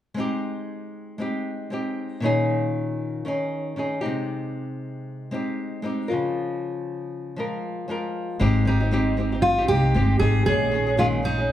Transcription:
0.14 nylon-string guitar G#3 C4 D#4
0.20 nylon-string guitar G4
1.18 nylon-string guitar G#3 C4 D#4 G4
1.70 nylon-string guitar G#3 C4 D#4 G4
2.20 nylon-string guitar A#2 D#3 C#4 D#4
2.25 nylon-string guitar G#4
3.25 nylon-string guitar D#3 C#4 D#4 G#4
3.76 nylon-string guitar D#3 C#4 D#4 G#4
4.01 nylon-string guitar G#3 C4 D#4 G4
4.06 nylon-string guitar C3
5.31 nylon-string guitar G#3 C4 D#4 G4
5.82 nylon-string guitar G#3 C4 D#4 G4
6.08 nylon-string guitar F3 G#3 F4 A#4
6.13 nylon-string guitar C#3
7.36 nylon-string guitar F3 G#3 F4 A#4
7.88 nylon-string guitar F3 G#3 F4 A#4
8.39 upright bass G#1, nylon-string guitar G#3 C4 D#4 G4
8.65 nylon-string guitar G#3 C4 D#4 G4, steel-string acoustic guitar D#4
8.80 nylon-string guitar C4 D#4 G4
8.91 nylon-string guitar G#3 C4 D#4 G4
9.17 nylon-string guitar G#3 C4 D#4 G4
9.32 nylon-string guitar C4 D#4 G4
9.42 steel-string acoustic guitar F4
9.58 nylon-string guitar C4 D#4 G4
9.68 upright bass C2, nylon-string guitar G#3 C4 D#4 G4, steel-string acoustic guitar G4
9.94 upright bass G1, nylon-string guitar G#3 C4 D#4 G4
10.19 upright bass G#1, nylon-string guitar G#3 C4 D#4 G4, steel-string acoustic guitar G#4
10.46 upright bass A#1, nylon-string guitar A#2 D#3 G#3 C#4 G#4, steel-string acoustic guitar G#4
10.71 nylon-string guitar D#3 G#3 C#4 G#4
10.87 nylon-string guitar G#3 C#4 G#4
10.97 nylon-string guitar A#2 D#3 G#3 C#4 G#4, steel-string acoustic guitar F4
11.23 nylon-string guitar D#3 G#3 C#4 G#4, steel-string acoustic guitar D#4
11.38 nylon-string guitar G#3 C#4 G#4

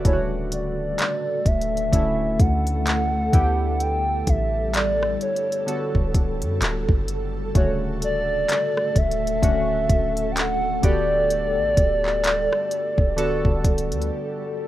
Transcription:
Already playing: synth keys B4 D5
0.05 808-style bass D1, synth keys C#3 D3 A3 E4, ambient pad A3 A4, soft synth lead C#5, kick, closed hi-hat
0.13 synth keys F#4
0.52 soft synth lead D5, closed hi-hat
0.99 clap, closed hi-hat
1.46 808-style bass D1, soft synth lead E5, kick, closed hi-hat
1.61 closed hi-hat
1.77 closed hi-hat
1.92 808-style bass D1, synth keys D3 A3 C#4 E4, kick, closed hi-hat
2.39 808-style bass D2, soft synth lead F#5, kick, closed hi-hat
2.67 closed hi-hat
2.87 clap, closed hi-hat
3.32 808-style bass D2, synth keys D3 B3 E4 G4, ambient pad G3, kick, closed hi-hat
3.80 soft synth lead G5, closed hi-hat
4.27 808-style bass A1, soft synth lead E5, kick, closed hi-hat
4.74 soft synth lead D5, clap, closed hi-hat
5.03 cross-stick
5.21 soft synth lead C#5, closed hi-hat
5.36 closed hi-hat
5.52 closed hi-hat
5.66 synth keys D3 B3 F#4 A4, closed hi-hat
5.95 808-style bass D1, kick
6.14 kick, closed hi-hat
6.42 808-style bass F#2, closed hi-hat
6.61 808-style bass D1, clap, closed hi-hat
6.89 808-style bass F#1, kick
7.08 closed hi-hat
7.55 808-style bass D1, synth keys C#3 D3 A3 F#4, ambient pad A3, soft synth lead C#5, kick, closed hi-hat
8.02 soft synth lead D5, closed hi-hat
8.49 clap, closed hi-hat
8.77 cross-stick
8.96 808-style bass D1, soft synth lead E5, kick, closed hi-hat
9.11 closed hi-hat
9.27 closed hi-hat
9.42 808-style bass D1, synth keys D3 A3 C#4 F#4, kick, closed hi-hat
9.89 808-style bass D1, kick, closed hi-hat
10.17 closed hi-hat
10.32 soft synth lead G5
10.37 soft synth lead F#5, clap, closed hi-hat
10.82 808-style bass D1, synth keys D3 B3 F#4 G4, ambient pad G3, soft synth lead D5, kick, closed hi-hat
11.30 closed hi-hat
11.57 808-style bass A1
11.77 808-style bass D1, kick, closed hi-hat
12.06 clap
12.24 clap, closed hi-hat
12.53 cross-stick
12.71 closed hi-hat
12.98 808-style bass D1, kick
13.17 synth keys D3 B3 F#4 A4, closed hi-hat
13.45 808-style bass D1, kick
13.64 kick, closed hi-hat
13.78 closed hi-hat
13.92 808-style bass D2, closed hi-hat
14.02 closed hi-hat

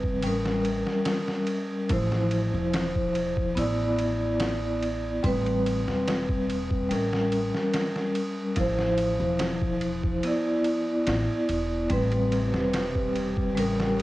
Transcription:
Already playing: upright bass E1, vibraphone G3 C4 B4
0.03 kick
0.22 upright bass A1, vibraphone G3 C#4, ride
0.27 vibraphone A#4
0.46 snare
0.65 ride
0.87 snare
1.05 snare, ride
1.28 snare
1.47 ride
1.89 upright bass A1, vibraphone F3 E4 C5, kick, ride
2.12 snare
2.31 ride
2.54 upright bass E1
2.73 snare, ride
2.95 kick
3.15 ride
3.37 kick
3.55 upright bass A1, vibraphone B3 E4 D5, ride
3.99 ride
4.40 snare, ride
4.82 ride
5.23 upright bass A1, vibraphone G3 C4 B4, kick, ride
5.46 ride
5.66 ride
5.88 upright bass E1, snare
6.08 snare, ride
6.29 kick
6.50 ride
6.71 kick
6.89 upright bass A1, vibraphone G3 C#4 A#4, ride
7.13 snare
7.32 ride
7.54 snare
7.73 snare, ride
7.96 snare
8.15 ride
8.56 upright bass A1, vibraphone F3 E4, kick, ride
8.60 vibraphone C5
8.79 snare
8.98 ride
9.20 upright bass E1
9.39 snare, ride
9.62 kick
9.81 ride
10.03 kick
10.23 vibraphone B3 E4, ride
10.27 vibraphone D5
10.64 ride
11.07 upright bass A1, snare, ride
11.49 upright bass E1, ride
11.90 upright bass A1, string section C3 G3, vibraphone G3 C4 B4, kick, ride
12.12 ride
12.32 ride
12.54 upright bass E1, snare
12.74 snare, ride
12.95 kick
13.16 ride
13.37 kick
13.55 upright bass A1, string section C#3, vibraphone G3 C#4 A#4, ride
13.80 snare

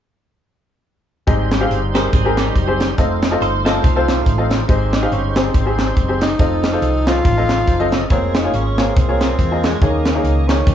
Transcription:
1.27 fingered electric bass G#1, upright piano G#2 C4 G4 G#4 D#5, tonewheel organ G3 D#4 G4 C5, kick, closed hi-hat
1.51 snare, closed hi-hat
1.60 upright piano C4 G4 G#4 F5
1.71 fingered electric bass G1, closed hi-hat
1.94 upright piano C4 G4 G#4 A#4, clean electric guitar D#4 C5, snare, closed hi-hat
2.13 fingered electric bass G#1, clean electric guitar C4 G#4, kick, closed hi-hat
2.25 upright piano C4 G4 G#4 A#4
2.37 clean electric guitar G3 D#4, snare, closed hi-hat
2.56 fingered electric bass F#1, kick, closed hi-hat
2.67 upright piano C4 G4 G#4 C5
2.80 snare, closed hi-hat
2.98 fingered electric bass F1, tonewheel organ A3 D#4 F4 C5, upright piano C4 F4 A4 D#5, kick, closed hi-hat
3.22 snare, closed hi-hat
3.31 upright piano C4 F4 A4 D#5
3.41 fingered electric bass G1, clean electric guitar D#4 C5, closed hi-hat
3.65 upright piano C4 F4 A4 D#5, clean electric guitar C4 A4, snare, closed hi-hat
3.83 fingered electric bass C2, clean electric guitar A3 F4, kick, closed hi-hat
3.96 upright piano C4 F4 A4 C5
4.08 snare, closed hi-hat
4.26 fingered electric bass A1, kick, closed hi-hat
4.38 upright piano C4 F4 A4 D#5
4.51 snare, closed hi-hat
4.68 fingered electric bass G#1, upright piano G#2 C4 G4 G#4 D#5, tonewheel organ G#3 D#4 G4 C5, tenor saxophone C4, kick, closed hi-hat
4.93 tenor saxophone D#4, snare, closed hi-hat
5.02 upright piano C4 G4 G#4 F5
5.12 fingered electric bass G1, tenor saxophone C#4, closed hi-hat
5.26 tenor saxophone C#4
5.36 upright piano C4 G4 G#4 C5, tenor saxophone C4, snare, closed hi-hat
5.54 fingered electric bass G#1, kick, closed hi-hat
5.65 upright piano C4 G4 G#4 C5
5.79 snare, closed hi-hat
5.97 fingered electric bass F#1, kick, closed hi-hat
6.08 upright piano C4 G4 G#4 C5
6.21 tenor saxophone D#4, snare, closed hi-hat
6.39 fingered electric bass F1, tonewheel organ F3 C4 D#4 A4, upright piano C4 F4 A4 D#5, tenor saxophone D#4, kick, closed hi-hat
6.63 snare, closed hi-hat
6.73 upright piano C4 F4 A4 C5
6.82 fingered electric bass C2, closed hi-hat
7.07 upright piano C4 F4 A4 D#5, tenor saxophone F4, snare, closed hi-hat
7.25 fingered electric bass A1, kick, closed hi-hat
7.37 upright piano C4 F4 A4 D#5
7.49 snare, closed hi-hat
7.67 fingered electric bass F#1, tonewheel organ C5, kick, closed hi-hat
7.79 upright piano C4 F4 A4 D#5
7.92 tonewheel organ D#5, snare, closed hi-hat
8.10 fingered electric bass F1, tonewheel organ G#3 A#3 F4 G#4, upright piano A#3 F4 G#4 C#5, tenor saxophone C4, kick, closed hi-hat
8.34 tenor saxophone D#4, snare, closed hi-hat
8.44 upright piano A#3 F4 G#4 C#5
8.54 fingered electric bass G#1, tenor saxophone C#4, closed hi-hat
8.78 upright piano A#3 F4 G#4 C#5, tenor saxophone C4, snare, closed hi-hat
8.97 fingered electric bass C2, kick, closed hi-hat
9.08 upright piano A#3 F4 G#4 C#5
9.21 snare, closed hi-hat
9.39 fingered electric bass E2, kick, closed hi-hat
9.51 upright piano A#3 F4 G#4 D#5
9.64 tenor saxophone G#3, snare, closed hi-hat
9.81 fingered electric bass D#2, tonewheel organ D#3 A#3 C#4 G4, upright piano D#3 A#3 D#4 G#4 C#5, tenor saxophone A#3, kick, closed hi-hat
9.86 tonewheel organ G#4
10.05 snare, closed hi-hat
10.14 upright piano A#3 D#4 G#4 C#5
10.24 fingered electric bass C#2, closed hi-hat
10.48 upright piano A#3 D#4 G#4 C#5, tenor saxophone C#4, snare, closed hi-hat
10.66 fingered electric bass D#2, upright piano D#3, tonewheel organ D#3 A#3 C#4 G4, kick, closed hi-hat

